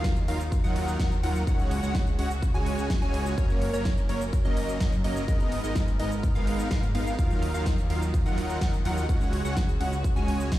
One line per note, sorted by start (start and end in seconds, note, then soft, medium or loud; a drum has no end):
0.00 0.26 D#2 loud
0.00 0.12 F#3 medium
0.00 1.45 F#3 medium
0.00 0.12 D#4 medium
0.00 1.45 D#4 medium
0.00 0.12 F4 medium
0.00 0.12 A#4 medium
0.00 0.12 F5 loud
0.04 kick loud
0.04 snare loud
0.04 closed hi-hat medium
0.04 shaker medium
0.16 closed hi-hat soft
0.16 shaker soft
0.28 0.62 D#2 medium
0.28 0.41 F#3 medium
0.28 0.41 D#4 medium
0.28 0.41 F4 medium
0.28 0.41 A#4 medium
0.28 0.41 F5 medium
0.28 open hi-hat loud
0.28 ride medium
0.40 closed hi-hat soft
0.40 shaker medium
0.52 kick loud
0.52 closed hi-hat medium
0.52 shaker medium
0.64 0.97 D#2 loud
0.64 0.97 F#3 medium
0.64 0.97 D#4 medium
0.64 0.97 F4 medium
0.64 0.97 A#4 medium
0.64 0.97 F#5 loud
0.64 closed hi-hat soft
0.64 shaker soft
0.76 open hi-hat loud
0.76 ride medium
0.88 closed hi-hat soft
0.88 shaker medium
0.99 1.21 D#2 medium
0.99 1.12 F#3 medium
0.99 1.12 D#4 medium
0.99 1.12 F4 medium
0.99 1.12 A#4 medium
0.99 1.12 F#5 loud
0.99 kick loud
0.99 snare loud
0.99 closed hi-hat medium
0.99 shaker medium
1.12 closed hi-hat soft
1.12 shaker soft
1.23 1.45 D#2 loud
1.23 1.43 F#3 medium
1.23 1.43 D#4 medium
1.23 1.43 F4 medium
1.23 1.43 A#4 medium
1.23 1.43 F#5 loud
1.23 open hi-hat loud
1.23 ride medium
1.35 closed hi-hat soft
1.35 shaker medium
1.47 1.81 C#2 medium
1.47 3.36 C#3 medium
1.47 1.80 G#3 medium
1.47 3.36 G#3 medium
1.47 1.80 C#4 medium
1.47 1.80 F#4 medium
1.47 3.36 F#4 medium
1.47 1.80 C#5 medium
1.47 1.80 F#5 medium
1.47 1.80 F#5 loud
1.47 kick loud
1.47 closed hi-hat medium
1.47 shaker medium
1.59 closed hi-hat soft
1.59 shaker soft
1.71 open hi-hat loud
1.71 ride medium
1.83 2.16 C#2 loud
1.83 2.03 G#3 medium
1.83 2.03 C#4 medium
1.83 2.03 F#4 medium
1.83 2.03 C#5 medium
1.83 2.03 F#5 loud
1.83 closed hi-hat soft
1.83 shaker medium
1.95 kick loud
1.95 snare loud
1.95 closed hi-hat medium
1.95 shaker medium
2.07 closed hi-hat soft
2.07 shaker soft
2.19 2.52 C#2 medium
2.19 2.31 G#3 medium
2.19 2.31 C#4 medium
2.19 2.31 F#4 medium
2.19 2.31 C#5 medium
2.19 2.31 F#5 medium
2.19 open hi-hat loud
2.19 ride medium
2.31 closed hi-hat soft
2.31 shaker medium
2.42 kick loud
2.42 closed hi-hat medium
2.42 shaker medium
2.54 3.00 C#2 loud
2.54 2.88 G#3 medium
2.54 2.88 C#4 medium
2.54 2.88 F#4 medium
2.54 2.88 C#5 medium
2.54 2.88 G#5 loud
2.54 closed hi-hat soft
2.54 shaker soft
2.66 open hi-hat loud
2.66 ride medium
2.78 closed hi-hat soft
2.78 shaker medium
2.90 kick loud
2.90 snare loud
2.90 closed hi-hat medium
2.90 shaker medium
3.02 3.35 C#2 loud
3.02 3.35 G#3 medium
3.02 3.35 C#4 medium
3.02 3.35 F#4 medium
3.02 3.35 C#5 medium
3.02 3.35 G#5 loud
3.02 closed hi-hat soft
3.02 shaker soft
3.14 open hi-hat loud
3.14 ride medium
3.26 closed hi-hat soft
3.26 shaker medium
3.38 3.71 F#1 loud
3.38 3.71 F#3 medium
3.38 5.26 F#3 medium
3.38 3.71 A#3 medium
3.38 3.71 C#4 medium
3.38 5.26 C#4 medium
3.38 3.71 A#4 medium
3.38 5.26 A#4 medium
3.38 3.71 C#5 medium
3.38 3.71 C#5 loud
3.38 kick loud
3.38 closed hi-hat medium
3.38 shaker medium
3.50 closed hi-hat soft
3.50 shaker soft
3.62 open hi-hat loud
3.62 ride medium
3.73 4.07 F#1 loud
3.73 3.93 F#3 medium
3.73 3.93 A#3 medium
3.73 3.93 C#4 medium
3.73 3.93 A#4 medium
3.73 3.93 C#5 loud
3.73 closed hi-hat soft
3.73 shaker medium
3.85 kick loud
3.85 snare loud
3.85 closed hi-hat medium
3.85 shaker medium
3.97 closed hi-hat soft
3.97 shaker soft
4.09 4.43 F#1 medium
4.09 4.22 F#3 medium
4.09 4.22 A#3 medium
4.09 4.22 C#4 medium
4.09 4.22 A#4 medium
4.09 4.22 C#5 medium
4.09 open hi-hat medium
4.09 ride medium
4.21 closed hi-hat soft
4.21 shaker medium
4.33 kick loud
4.33 closed hi-hat medium
4.33 shaker medium
4.45 4.78 F#1 medium
4.45 4.78 F#3 medium
4.45 4.78 A#3 medium
4.45 4.78 C#4 medium
4.45 4.78 A#4 medium
4.45 4.78 D#5 loud
4.45 closed hi-hat soft
4.45 shaker soft
4.57 open hi-hat loud
4.57 ride medium
4.69 closed hi-hat soft
4.69 shaker medium
4.80 5.02 F#2 medium
4.80 4.93 A#3 medium
4.80 4.93 A#4 medium
4.80 4.93 D#5 medium
4.80 4.93 D#5 loud
4.80 kick loud
4.80 snare loud
4.80 closed hi-hat medium
4.80 shaker medium
4.93 closed hi-hat soft
4.93 shaker soft
5.04 5.26 F#1 loud
5.04 5.24 F#3 medium
5.04 5.24 A#3 medium
5.04 5.24 C#4 medium
5.04 5.24 A#4 medium
5.04 5.24 D#5 loud
5.04 open hi-hat loud
5.04 ride medium
5.16 closed hi-hat soft
5.16 shaker medium
5.28 5.62 G#1 medium
5.28 5.61 G#3 medium
5.28 7.17 G#3 medium
5.28 5.61 B3 medium
5.28 7.17 B3 medium
5.28 5.61 D#4 medium
5.28 5.61 A#4 medium
5.28 7.17 A#4 medium
5.28 5.61 D#5 loud
5.28 kick loud
5.28 closed hi-hat medium
5.28 shaker medium
5.40 closed hi-hat soft
5.40 shaker soft
5.52 open hi-hat loud
5.52 ride medium
5.64 5.97 G#1 loud
5.64 5.84 G#3 medium
5.64 5.84 B3 medium
5.64 5.84 D#4 medium
5.64 5.84 A#4 medium
5.64 5.84 D#5 loud
5.64 closed hi-hat soft
5.64 shaker medium
5.75 kick loud
5.75 snare loud
5.75 closed hi-hat medium
5.75 shaker medium
5.88 closed hi-hat soft
5.88 shaker soft
6.00 6.33 G#1 medium
6.00 6.12 G#3 medium
6.00 6.12 B3 medium
6.00 6.12 D#4 medium
6.00 6.12 A#4 medium
6.00 6.12 D#5 medium
6.00 open hi-hat medium
6.00 ride medium
6.11 closed hi-hat soft
6.11 shaker medium
6.23 kick loud
6.23 closed hi-hat medium
6.23 shaker medium
6.35 6.69 G#1 medium
6.35 6.69 G#3 medium
6.35 6.69 B3 medium
6.35 6.69 D#4 medium
6.35 6.69 A#4 medium
6.35 6.69 F5 loud
6.35 closed hi-hat soft
6.35 shaker soft
6.47 open hi-hat loud
6.47 ride medium
6.59 closed hi-hat soft
6.59 shaker medium
6.71 6.92 G#2 medium
6.71 6.83 G#3 medium
6.71 6.83 B3 medium
6.71 6.83 D#4 medium
6.71 6.83 F5 loud
6.71 kick loud
6.71 snare loud
6.71 closed hi-hat medium
6.71 shaker medium
6.83 closed hi-hat soft
6.83 shaker soft
6.95 7.16 G#1 loud
6.95 7.15 G#3 loud
6.95 7.15 B3 medium
6.95 7.15 D#4 medium
6.95 7.15 A#4 medium
6.95 7.15 F5 loud
6.95 open hi-hat medium
6.95 ride medium
7.07 closed hi-hat soft
7.07 shaker medium
7.19 7.52 D#2 medium
7.19 9.07 F#3 medium
7.19 7.52 F#3 medium
7.19 9.07 D#4 medium
7.19 7.51 D#4 medium
7.19 7.52 F4 medium
7.19 7.52 A#4 medium
7.19 7.51 F5 medium
7.19 kick loud
7.19 closed hi-hat loud
7.19 shaker medium
7.31 closed hi-hat soft
7.31 shaker soft
7.42 open hi-hat loud
7.42 ride medium
7.54 7.88 D#2 loud
7.54 7.74 F#3 medium
7.54 7.74 D#4 medium
7.54 7.74 F4 medium
7.54 7.74 A#4 medium
7.54 7.74 F5 loud
7.54 closed hi-hat soft
7.54 shaker medium
7.66 kick loud
7.66 snare loud
7.66 closed hi-hat loud
7.66 shaker medium
7.78 closed hi-hat soft
7.78 shaker soft
7.90 8.23 D#2 medium
7.90 8.02 F#3 medium
7.90 8.02 D#4 medium
7.90 8.02 F4 medium
7.90 8.02 A#4 medium
7.90 8.02 F5 medium
7.90 open hi-hat medium
7.90 ride medium
8.02 closed hi-hat soft
8.02 shaker medium
8.14 kick loud
8.14 closed hi-hat loud
8.14 shaker medium
8.26 8.59 D#2 medium
8.26 8.59 F#3 loud
8.26 8.59 D#4 medium
8.26 8.59 F4 medium
8.26 8.59 A#4 medium
8.26 8.59 F#5 loud
8.26 closed hi-hat soft
8.26 shaker soft
8.38 open hi-hat loud
8.38 ride medium
8.50 closed hi-hat soft
8.50 shaker medium
8.61 8.83 D#2 medium
8.61 8.74 F#3 medium
8.61 8.74 D#4 medium
8.61 8.74 F4 medium
8.61 8.74 A#4 medium
8.61 8.74 F#5 loud
8.61 kick loud
8.61 snare loud
8.61 closed hi-hat loud
8.61 shaker medium
8.73 closed hi-hat soft
8.73 shaker soft
8.85 9.07 D#2 medium
8.85 9.05 F#3 medium
8.85 9.05 D#4 medium
8.85 9.05 F4 medium
8.85 9.05 A#4 medium
8.85 9.05 F#5 loud
8.85 open hi-hat loud
8.85 ride medium
8.97 closed hi-hat soft
8.97 shaker medium
9.09 9.42 C#2 medium
9.09 10.59 C#3 medium
9.09 9.42 G#3 medium
9.09 10.59 G#3 medium
9.09 9.42 C#4 medium
9.09 9.42 F#4 medium
9.09 10.59 F#4 medium
9.09 9.42 C#5 medium
9.09 9.42 F#5 loud
9.09 kick loud
9.09 closed hi-hat loud
9.09 shaker medium
9.21 closed hi-hat soft
9.21 shaker soft
9.33 open hi-hat loud
9.33 ride medium
9.45 9.78 C#2 loud
9.45 9.65 G#3 medium
9.45 9.65 C#4 medium
9.45 9.65 F#4 medium
9.45 9.65 C#5 medium
9.45 9.65 F#5 loud
9.45 closed hi-hat soft
9.45 shaker medium
9.57 kick loud
9.57 snare loud
9.57 closed hi-hat loud
9.57 shaker medium
9.69 closed hi-hat soft
9.69 shaker soft
9.80 10.14 C#2 loud
9.80 9.93 G#3 medium
9.80 9.93 C#4 medium
9.80 9.93 F#4 medium
9.80 9.93 C#5 medium
9.80 9.93 F#5 medium
9.80 open hi-hat medium
9.80 ride medium
9.92 closed hi-hat soft
9.92 shaker medium
10.04 kick loud
10.04 closed hi-hat medium
10.04 shaker medium
10.16 10.59 C#2 loud
10.16 10.50 G#3 medium
10.16 10.50 C#4 medium
10.16 10.50 F#4 medium
10.16 10.50 C#5 medium
10.16 10.49 G#5 loud
10.16 10.50 G#5 loud
10.16 closed hi-hat soft
10.16 shaker soft
10.28 open hi-hat loud
10.28 ride medium
10.40 closed hi-hat soft
10.40 shaker medium
10.52 kick loud
10.52 snare loud
10.52 closed hi-hat loud
10.52 shaker medium